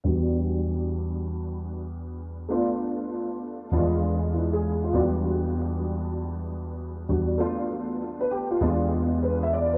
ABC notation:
X:1
M:4/4
L:1/16
Q:"Swing 16ths" 1/4=98
K:Em
V:1 name="Grand piano"
z16 | z12 E ^G2 =F- | =F z12 z3 | z4 z B G =F2 z3 B e d B |]
V:2 name="Grand piano"
[E,,G,B,DF]16 | [A,B,D=F]8 [E,,=F,^G,B,DF]8 | [E,,F,G,B,DF]12- [E,,F,G,B,DF]2 [E,,G,B,DF]2 | [A,B,D=F]8 [E,,^G,B,DF]8 |]